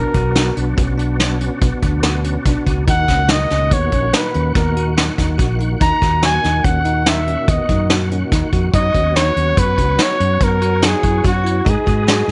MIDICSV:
0, 0, Header, 1, 6, 480
1, 0, Start_track
1, 0, Tempo, 418410
1, 3302, Time_signature, 7, 2, 24, 8
1, 14125, End_track
2, 0, Start_track
2, 0, Title_t, "Trumpet"
2, 0, Program_c, 0, 56
2, 0, Note_on_c, 0, 70, 74
2, 661, Note_off_c, 0, 70, 0
2, 3327, Note_on_c, 0, 78, 95
2, 3801, Note_on_c, 0, 75, 93
2, 3818, Note_off_c, 0, 78, 0
2, 4280, Note_on_c, 0, 73, 80
2, 4297, Note_off_c, 0, 75, 0
2, 4752, Note_on_c, 0, 71, 75
2, 4769, Note_off_c, 0, 73, 0
2, 5213, Note_off_c, 0, 71, 0
2, 5220, Note_on_c, 0, 70, 69
2, 5669, Note_off_c, 0, 70, 0
2, 6679, Note_on_c, 0, 82, 98
2, 7118, Note_off_c, 0, 82, 0
2, 7176, Note_on_c, 0, 80, 95
2, 7624, Note_on_c, 0, 78, 84
2, 7642, Note_off_c, 0, 80, 0
2, 8119, Note_on_c, 0, 76, 81
2, 8136, Note_off_c, 0, 78, 0
2, 8596, Note_on_c, 0, 75, 69
2, 8613, Note_off_c, 0, 76, 0
2, 9069, Note_off_c, 0, 75, 0
2, 10036, Note_on_c, 0, 75, 95
2, 10510, Note_on_c, 0, 73, 100
2, 10527, Note_off_c, 0, 75, 0
2, 10997, Note_on_c, 0, 71, 90
2, 11014, Note_off_c, 0, 73, 0
2, 11500, Note_on_c, 0, 73, 94
2, 11517, Note_off_c, 0, 71, 0
2, 11973, Note_on_c, 0, 70, 87
2, 11990, Note_off_c, 0, 73, 0
2, 12455, Note_on_c, 0, 68, 84
2, 12473, Note_off_c, 0, 70, 0
2, 12915, Note_off_c, 0, 68, 0
2, 12926, Note_on_c, 0, 66, 80
2, 13414, Note_on_c, 0, 68, 82
2, 13431, Note_off_c, 0, 66, 0
2, 14125, Note_off_c, 0, 68, 0
2, 14125, End_track
3, 0, Start_track
3, 0, Title_t, "Tonewheel organ"
3, 0, Program_c, 1, 16
3, 0, Note_on_c, 1, 47, 60
3, 0, Note_on_c, 1, 59, 51
3, 0, Note_on_c, 1, 62, 63
3, 0, Note_on_c, 1, 66, 54
3, 3252, Note_off_c, 1, 47, 0
3, 3258, Note_off_c, 1, 59, 0
3, 3262, Note_off_c, 1, 66, 0
3, 3273, Note_off_c, 1, 62, 0
3, 3276, Note_on_c, 1, 51, 57
3, 3293, Note_on_c, 1, 46, 54
3, 3303, Note_on_c, 1, 66, 54
3, 3319, Note_on_c, 1, 78, 60
3, 9963, Note_off_c, 1, 51, 0
3, 9972, Note_off_c, 1, 46, 0
3, 9976, Note_off_c, 1, 66, 0
3, 9985, Note_off_c, 1, 78, 0
3, 9995, Note_on_c, 1, 54, 59
3, 10000, Note_on_c, 1, 66, 55
3, 10025, Note_on_c, 1, 59, 57
3, 10038, Note_on_c, 1, 73, 63
3, 13316, Note_off_c, 1, 54, 0
3, 13319, Note_off_c, 1, 66, 0
3, 13331, Note_off_c, 1, 59, 0
3, 13338, Note_off_c, 1, 73, 0
3, 13361, Note_on_c, 1, 56, 60
3, 13372, Note_on_c, 1, 68, 55
3, 13389, Note_on_c, 1, 71, 50
3, 13403, Note_on_c, 1, 75, 61
3, 14125, Note_off_c, 1, 56, 0
3, 14125, Note_off_c, 1, 68, 0
3, 14125, Note_off_c, 1, 71, 0
3, 14125, Note_off_c, 1, 75, 0
3, 14125, End_track
4, 0, Start_track
4, 0, Title_t, "Tine electric piano"
4, 0, Program_c, 2, 4
4, 0, Note_on_c, 2, 62, 80
4, 122, Note_off_c, 2, 62, 0
4, 175, Note_on_c, 2, 66, 64
4, 368, Note_off_c, 2, 66, 0
4, 418, Note_on_c, 2, 66, 76
4, 610, Note_off_c, 2, 66, 0
4, 656, Note_on_c, 2, 62, 66
4, 849, Note_off_c, 2, 62, 0
4, 884, Note_on_c, 2, 61, 70
4, 1082, Note_off_c, 2, 61, 0
4, 1117, Note_on_c, 2, 62, 70
4, 1319, Note_off_c, 2, 62, 0
4, 1374, Note_on_c, 2, 62, 75
4, 1569, Note_off_c, 2, 62, 0
4, 1620, Note_on_c, 2, 61, 71
4, 1813, Note_off_c, 2, 61, 0
4, 1854, Note_on_c, 2, 59, 70
4, 2050, Note_off_c, 2, 59, 0
4, 2098, Note_on_c, 2, 62, 67
4, 2292, Note_off_c, 2, 62, 0
4, 2348, Note_on_c, 2, 66, 74
4, 2539, Note_off_c, 2, 66, 0
4, 2580, Note_on_c, 2, 61, 67
4, 2774, Note_off_c, 2, 61, 0
4, 2832, Note_on_c, 2, 62, 73
4, 3021, Note_off_c, 2, 62, 0
4, 3060, Note_on_c, 2, 66, 65
4, 3254, Note_off_c, 2, 66, 0
4, 3302, Note_on_c, 2, 63, 78
4, 3496, Note_off_c, 2, 63, 0
4, 3555, Note_on_c, 2, 61, 66
4, 3744, Note_off_c, 2, 61, 0
4, 3790, Note_on_c, 2, 63, 74
4, 3981, Note_off_c, 2, 63, 0
4, 4029, Note_on_c, 2, 61, 69
4, 4220, Note_off_c, 2, 61, 0
4, 4272, Note_on_c, 2, 59, 76
4, 4462, Note_off_c, 2, 59, 0
4, 4515, Note_on_c, 2, 61, 73
4, 4704, Note_off_c, 2, 61, 0
4, 4748, Note_on_c, 2, 63, 78
4, 4940, Note_off_c, 2, 63, 0
4, 4989, Note_on_c, 2, 61, 66
4, 5181, Note_off_c, 2, 61, 0
4, 5228, Note_on_c, 2, 59, 73
4, 5420, Note_off_c, 2, 59, 0
4, 5469, Note_on_c, 2, 66, 69
4, 5661, Note_off_c, 2, 66, 0
4, 5703, Note_on_c, 2, 63, 76
4, 5897, Note_off_c, 2, 63, 0
4, 5943, Note_on_c, 2, 63, 73
4, 6137, Note_off_c, 2, 63, 0
4, 6173, Note_on_c, 2, 66, 76
4, 6372, Note_off_c, 2, 66, 0
4, 6414, Note_on_c, 2, 63, 69
4, 6612, Note_off_c, 2, 63, 0
4, 6661, Note_on_c, 2, 63, 81
4, 6856, Note_off_c, 2, 63, 0
4, 6903, Note_on_c, 2, 66, 67
4, 7097, Note_off_c, 2, 66, 0
4, 7145, Note_on_c, 2, 66, 74
4, 7339, Note_off_c, 2, 66, 0
4, 7389, Note_on_c, 2, 63, 66
4, 7581, Note_off_c, 2, 63, 0
4, 7626, Note_on_c, 2, 61, 74
4, 7819, Note_off_c, 2, 61, 0
4, 7859, Note_on_c, 2, 63, 72
4, 8055, Note_off_c, 2, 63, 0
4, 8102, Note_on_c, 2, 63, 73
4, 8296, Note_off_c, 2, 63, 0
4, 8349, Note_on_c, 2, 61, 70
4, 8540, Note_off_c, 2, 61, 0
4, 8602, Note_on_c, 2, 59, 72
4, 8788, Note_off_c, 2, 59, 0
4, 8829, Note_on_c, 2, 63, 71
4, 9020, Note_off_c, 2, 63, 0
4, 9065, Note_on_c, 2, 66, 76
4, 9258, Note_off_c, 2, 66, 0
4, 9316, Note_on_c, 2, 61, 70
4, 9504, Note_off_c, 2, 61, 0
4, 9546, Note_on_c, 2, 63, 78
4, 9738, Note_off_c, 2, 63, 0
4, 9788, Note_on_c, 2, 66, 74
4, 9979, Note_off_c, 2, 66, 0
4, 10035, Note_on_c, 2, 63, 79
4, 10223, Note_off_c, 2, 63, 0
4, 10266, Note_on_c, 2, 61, 69
4, 10457, Note_off_c, 2, 61, 0
4, 10501, Note_on_c, 2, 63, 75
4, 10694, Note_off_c, 2, 63, 0
4, 10747, Note_on_c, 2, 61, 68
4, 10938, Note_off_c, 2, 61, 0
4, 10992, Note_on_c, 2, 59, 76
4, 11180, Note_off_c, 2, 59, 0
4, 11223, Note_on_c, 2, 61, 73
4, 11415, Note_off_c, 2, 61, 0
4, 11460, Note_on_c, 2, 63, 76
4, 11653, Note_off_c, 2, 63, 0
4, 11707, Note_on_c, 2, 61, 72
4, 11896, Note_off_c, 2, 61, 0
4, 11944, Note_on_c, 2, 59, 76
4, 12135, Note_off_c, 2, 59, 0
4, 12182, Note_on_c, 2, 66, 71
4, 12373, Note_off_c, 2, 66, 0
4, 12426, Note_on_c, 2, 63, 78
4, 12615, Note_off_c, 2, 63, 0
4, 12654, Note_on_c, 2, 64, 72
4, 12848, Note_off_c, 2, 64, 0
4, 12892, Note_on_c, 2, 66, 75
4, 13087, Note_off_c, 2, 66, 0
4, 13123, Note_on_c, 2, 64, 66
4, 13322, Note_off_c, 2, 64, 0
4, 13363, Note_on_c, 2, 63, 77
4, 13561, Note_off_c, 2, 63, 0
4, 13608, Note_on_c, 2, 66, 68
4, 13804, Note_off_c, 2, 66, 0
4, 13849, Note_on_c, 2, 66, 76
4, 14044, Note_off_c, 2, 66, 0
4, 14082, Note_on_c, 2, 63, 67
4, 14125, Note_off_c, 2, 63, 0
4, 14125, End_track
5, 0, Start_track
5, 0, Title_t, "Fretless electric bass"
5, 0, Program_c, 3, 35
5, 163, Note_on_c, 3, 35, 93
5, 570, Note_off_c, 3, 35, 0
5, 650, Note_on_c, 3, 35, 90
5, 853, Note_off_c, 3, 35, 0
5, 892, Note_on_c, 3, 35, 78
5, 1700, Note_off_c, 3, 35, 0
5, 1855, Note_on_c, 3, 35, 87
5, 1957, Note_off_c, 3, 35, 0
5, 2094, Note_on_c, 3, 38, 75
5, 2701, Note_off_c, 3, 38, 0
5, 2820, Note_on_c, 3, 35, 76
5, 2921, Note_off_c, 3, 35, 0
5, 3054, Note_on_c, 3, 37, 77
5, 3259, Note_off_c, 3, 37, 0
5, 3299, Note_on_c, 3, 39, 91
5, 3501, Note_off_c, 3, 39, 0
5, 3542, Note_on_c, 3, 37, 77
5, 3945, Note_off_c, 3, 37, 0
5, 4027, Note_on_c, 3, 37, 88
5, 4227, Note_off_c, 3, 37, 0
5, 4259, Note_on_c, 3, 39, 78
5, 4462, Note_off_c, 3, 39, 0
5, 4499, Note_on_c, 3, 34, 87
5, 4702, Note_off_c, 3, 34, 0
5, 4990, Note_on_c, 3, 39, 77
5, 5189, Note_off_c, 3, 39, 0
5, 5226, Note_on_c, 3, 39, 82
5, 5829, Note_off_c, 3, 39, 0
5, 5951, Note_on_c, 3, 39, 77
5, 6149, Note_off_c, 3, 39, 0
5, 6182, Note_on_c, 3, 34, 90
5, 6585, Note_off_c, 3, 34, 0
5, 6669, Note_on_c, 3, 39, 82
5, 6767, Note_off_c, 3, 39, 0
5, 6905, Note_on_c, 3, 39, 89
5, 7307, Note_off_c, 3, 39, 0
5, 7392, Note_on_c, 3, 39, 84
5, 7590, Note_off_c, 3, 39, 0
5, 7623, Note_on_c, 3, 39, 78
5, 8427, Note_off_c, 3, 39, 0
5, 8580, Note_on_c, 3, 39, 91
5, 8682, Note_off_c, 3, 39, 0
5, 8827, Note_on_c, 3, 42, 81
5, 9428, Note_off_c, 3, 42, 0
5, 9544, Note_on_c, 3, 39, 83
5, 9644, Note_off_c, 3, 39, 0
5, 9782, Note_on_c, 3, 41, 85
5, 9983, Note_off_c, 3, 41, 0
5, 10019, Note_on_c, 3, 42, 94
5, 10221, Note_off_c, 3, 42, 0
5, 10262, Note_on_c, 3, 39, 82
5, 10663, Note_off_c, 3, 39, 0
5, 10740, Note_on_c, 3, 39, 87
5, 10941, Note_off_c, 3, 39, 0
5, 10980, Note_on_c, 3, 42, 84
5, 11180, Note_off_c, 3, 42, 0
5, 11220, Note_on_c, 3, 37, 88
5, 11420, Note_off_c, 3, 37, 0
5, 11701, Note_on_c, 3, 42, 75
5, 11901, Note_off_c, 3, 42, 0
5, 11943, Note_on_c, 3, 42, 89
5, 12543, Note_off_c, 3, 42, 0
5, 12658, Note_on_c, 3, 42, 78
5, 12858, Note_off_c, 3, 42, 0
5, 12900, Note_on_c, 3, 42, 87
5, 13300, Note_off_c, 3, 42, 0
5, 13382, Note_on_c, 3, 44, 84
5, 13479, Note_off_c, 3, 44, 0
5, 13620, Note_on_c, 3, 44, 92
5, 14019, Note_off_c, 3, 44, 0
5, 14084, Note_on_c, 3, 44, 86
5, 14125, Note_off_c, 3, 44, 0
5, 14125, End_track
6, 0, Start_track
6, 0, Title_t, "Drums"
6, 161, Note_on_c, 9, 42, 51
6, 166, Note_on_c, 9, 36, 71
6, 275, Note_off_c, 9, 42, 0
6, 281, Note_off_c, 9, 36, 0
6, 406, Note_on_c, 9, 38, 86
6, 406, Note_on_c, 9, 42, 68
6, 520, Note_off_c, 9, 38, 0
6, 520, Note_off_c, 9, 42, 0
6, 650, Note_on_c, 9, 42, 52
6, 764, Note_off_c, 9, 42, 0
6, 889, Note_on_c, 9, 42, 75
6, 891, Note_on_c, 9, 36, 94
6, 1003, Note_off_c, 9, 42, 0
6, 1006, Note_off_c, 9, 36, 0
6, 1134, Note_on_c, 9, 42, 55
6, 1249, Note_off_c, 9, 42, 0
6, 1373, Note_on_c, 9, 38, 99
6, 1373, Note_on_c, 9, 42, 73
6, 1488, Note_off_c, 9, 38, 0
6, 1488, Note_off_c, 9, 42, 0
6, 1613, Note_on_c, 9, 42, 58
6, 1728, Note_off_c, 9, 42, 0
6, 1850, Note_on_c, 9, 42, 75
6, 1854, Note_on_c, 9, 36, 98
6, 1965, Note_off_c, 9, 42, 0
6, 1969, Note_off_c, 9, 36, 0
6, 2092, Note_on_c, 9, 42, 58
6, 2094, Note_on_c, 9, 36, 74
6, 2207, Note_off_c, 9, 42, 0
6, 2208, Note_off_c, 9, 36, 0
6, 2327, Note_on_c, 9, 38, 98
6, 2327, Note_on_c, 9, 42, 76
6, 2441, Note_off_c, 9, 38, 0
6, 2441, Note_off_c, 9, 42, 0
6, 2571, Note_on_c, 9, 42, 60
6, 2686, Note_off_c, 9, 42, 0
6, 2816, Note_on_c, 9, 36, 92
6, 2816, Note_on_c, 9, 42, 71
6, 2930, Note_off_c, 9, 42, 0
6, 2931, Note_off_c, 9, 36, 0
6, 3058, Note_on_c, 9, 36, 71
6, 3058, Note_on_c, 9, 42, 55
6, 3172, Note_off_c, 9, 36, 0
6, 3173, Note_off_c, 9, 42, 0
6, 3297, Note_on_c, 9, 42, 76
6, 3299, Note_on_c, 9, 36, 107
6, 3412, Note_off_c, 9, 42, 0
6, 3414, Note_off_c, 9, 36, 0
6, 3534, Note_on_c, 9, 38, 31
6, 3534, Note_on_c, 9, 42, 53
6, 3537, Note_on_c, 9, 36, 66
6, 3649, Note_off_c, 9, 38, 0
6, 3649, Note_off_c, 9, 42, 0
6, 3652, Note_off_c, 9, 36, 0
6, 3767, Note_on_c, 9, 38, 91
6, 3767, Note_on_c, 9, 42, 66
6, 3882, Note_off_c, 9, 38, 0
6, 3882, Note_off_c, 9, 42, 0
6, 4015, Note_on_c, 9, 38, 30
6, 4015, Note_on_c, 9, 42, 49
6, 4130, Note_off_c, 9, 38, 0
6, 4130, Note_off_c, 9, 42, 0
6, 4257, Note_on_c, 9, 42, 69
6, 4260, Note_on_c, 9, 36, 100
6, 4371, Note_off_c, 9, 42, 0
6, 4375, Note_off_c, 9, 36, 0
6, 4496, Note_on_c, 9, 42, 53
6, 4500, Note_on_c, 9, 36, 68
6, 4611, Note_off_c, 9, 42, 0
6, 4615, Note_off_c, 9, 36, 0
6, 4741, Note_on_c, 9, 38, 103
6, 4741, Note_on_c, 9, 42, 70
6, 4856, Note_off_c, 9, 38, 0
6, 4856, Note_off_c, 9, 42, 0
6, 4979, Note_on_c, 9, 42, 57
6, 5094, Note_off_c, 9, 42, 0
6, 5221, Note_on_c, 9, 38, 31
6, 5221, Note_on_c, 9, 42, 72
6, 5224, Note_on_c, 9, 36, 95
6, 5335, Note_off_c, 9, 38, 0
6, 5335, Note_off_c, 9, 42, 0
6, 5338, Note_off_c, 9, 36, 0
6, 5467, Note_on_c, 9, 42, 56
6, 5582, Note_off_c, 9, 42, 0
6, 5707, Note_on_c, 9, 38, 100
6, 5707, Note_on_c, 9, 42, 74
6, 5821, Note_off_c, 9, 38, 0
6, 5821, Note_off_c, 9, 42, 0
6, 5946, Note_on_c, 9, 36, 70
6, 5947, Note_on_c, 9, 38, 32
6, 5947, Note_on_c, 9, 42, 60
6, 6060, Note_off_c, 9, 36, 0
6, 6061, Note_off_c, 9, 38, 0
6, 6061, Note_off_c, 9, 42, 0
6, 6181, Note_on_c, 9, 42, 75
6, 6184, Note_on_c, 9, 36, 92
6, 6296, Note_off_c, 9, 42, 0
6, 6299, Note_off_c, 9, 36, 0
6, 6427, Note_on_c, 9, 42, 57
6, 6542, Note_off_c, 9, 42, 0
6, 6665, Note_on_c, 9, 36, 105
6, 6665, Note_on_c, 9, 42, 83
6, 6779, Note_off_c, 9, 36, 0
6, 6780, Note_off_c, 9, 42, 0
6, 6905, Note_on_c, 9, 36, 75
6, 6910, Note_on_c, 9, 38, 30
6, 6910, Note_on_c, 9, 42, 56
6, 7020, Note_off_c, 9, 36, 0
6, 7025, Note_off_c, 9, 38, 0
6, 7025, Note_off_c, 9, 42, 0
6, 7141, Note_on_c, 9, 38, 95
6, 7141, Note_on_c, 9, 42, 68
6, 7256, Note_off_c, 9, 38, 0
6, 7256, Note_off_c, 9, 42, 0
6, 7389, Note_on_c, 9, 38, 30
6, 7389, Note_on_c, 9, 42, 56
6, 7504, Note_off_c, 9, 38, 0
6, 7504, Note_off_c, 9, 42, 0
6, 7623, Note_on_c, 9, 36, 96
6, 7625, Note_on_c, 9, 42, 73
6, 7737, Note_off_c, 9, 36, 0
6, 7740, Note_off_c, 9, 42, 0
6, 7858, Note_on_c, 9, 42, 56
6, 7972, Note_off_c, 9, 42, 0
6, 8100, Note_on_c, 9, 38, 105
6, 8100, Note_on_c, 9, 42, 75
6, 8215, Note_off_c, 9, 38, 0
6, 8215, Note_off_c, 9, 42, 0
6, 8344, Note_on_c, 9, 42, 54
6, 8459, Note_off_c, 9, 42, 0
6, 8579, Note_on_c, 9, 42, 70
6, 8582, Note_on_c, 9, 36, 100
6, 8693, Note_off_c, 9, 42, 0
6, 8696, Note_off_c, 9, 36, 0
6, 8818, Note_on_c, 9, 42, 55
6, 8822, Note_on_c, 9, 36, 71
6, 8932, Note_off_c, 9, 42, 0
6, 8937, Note_off_c, 9, 36, 0
6, 9060, Note_on_c, 9, 38, 99
6, 9060, Note_on_c, 9, 42, 75
6, 9174, Note_off_c, 9, 38, 0
6, 9174, Note_off_c, 9, 42, 0
6, 9306, Note_on_c, 9, 42, 54
6, 9421, Note_off_c, 9, 42, 0
6, 9543, Note_on_c, 9, 36, 92
6, 9545, Note_on_c, 9, 38, 30
6, 9545, Note_on_c, 9, 42, 70
6, 9658, Note_off_c, 9, 36, 0
6, 9659, Note_off_c, 9, 38, 0
6, 9659, Note_off_c, 9, 42, 0
6, 9780, Note_on_c, 9, 42, 54
6, 9782, Note_on_c, 9, 36, 68
6, 9895, Note_off_c, 9, 42, 0
6, 9896, Note_off_c, 9, 36, 0
6, 10018, Note_on_c, 9, 42, 81
6, 10021, Note_on_c, 9, 36, 99
6, 10133, Note_off_c, 9, 42, 0
6, 10136, Note_off_c, 9, 36, 0
6, 10261, Note_on_c, 9, 36, 69
6, 10263, Note_on_c, 9, 42, 56
6, 10376, Note_off_c, 9, 36, 0
6, 10378, Note_off_c, 9, 42, 0
6, 10508, Note_on_c, 9, 38, 89
6, 10508, Note_on_c, 9, 42, 75
6, 10623, Note_off_c, 9, 38, 0
6, 10623, Note_off_c, 9, 42, 0
6, 10744, Note_on_c, 9, 42, 58
6, 10859, Note_off_c, 9, 42, 0
6, 10982, Note_on_c, 9, 36, 102
6, 10983, Note_on_c, 9, 42, 79
6, 11097, Note_off_c, 9, 36, 0
6, 11098, Note_off_c, 9, 42, 0
6, 11219, Note_on_c, 9, 36, 66
6, 11222, Note_on_c, 9, 42, 58
6, 11334, Note_off_c, 9, 36, 0
6, 11336, Note_off_c, 9, 42, 0
6, 11455, Note_on_c, 9, 38, 104
6, 11455, Note_on_c, 9, 42, 78
6, 11569, Note_off_c, 9, 38, 0
6, 11569, Note_off_c, 9, 42, 0
6, 11704, Note_on_c, 9, 42, 55
6, 11818, Note_off_c, 9, 42, 0
6, 11938, Note_on_c, 9, 36, 95
6, 11938, Note_on_c, 9, 42, 78
6, 12053, Note_off_c, 9, 36, 0
6, 12053, Note_off_c, 9, 42, 0
6, 12178, Note_on_c, 9, 42, 58
6, 12293, Note_off_c, 9, 42, 0
6, 12416, Note_on_c, 9, 38, 102
6, 12416, Note_on_c, 9, 42, 73
6, 12531, Note_off_c, 9, 38, 0
6, 12531, Note_off_c, 9, 42, 0
6, 12658, Note_on_c, 9, 36, 69
6, 12658, Note_on_c, 9, 42, 55
6, 12772, Note_off_c, 9, 36, 0
6, 12773, Note_off_c, 9, 42, 0
6, 12899, Note_on_c, 9, 36, 90
6, 12904, Note_on_c, 9, 42, 67
6, 13014, Note_off_c, 9, 36, 0
6, 13018, Note_off_c, 9, 42, 0
6, 13146, Note_on_c, 9, 42, 57
6, 13261, Note_off_c, 9, 42, 0
6, 13379, Note_on_c, 9, 36, 101
6, 13387, Note_on_c, 9, 42, 74
6, 13494, Note_off_c, 9, 36, 0
6, 13502, Note_off_c, 9, 42, 0
6, 13617, Note_on_c, 9, 36, 73
6, 13617, Note_on_c, 9, 42, 51
6, 13732, Note_off_c, 9, 36, 0
6, 13732, Note_off_c, 9, 42, 0
6, 13856, Note_on_c, 9, 38, 93
6, 13856, Note_on_c, 9, 42, 70
6, 13971, Note_off_c, 9, 38, 0
6, 13971, Note_off_c, 9, 42, 0
6, 14125, End_track
0, 0, End_of_file